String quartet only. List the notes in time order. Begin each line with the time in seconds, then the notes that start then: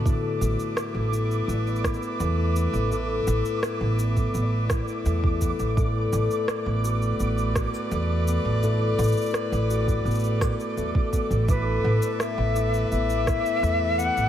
0.06 A3 A4 B4 E5
5.77 A4 B4 D5
11.48 B4 E5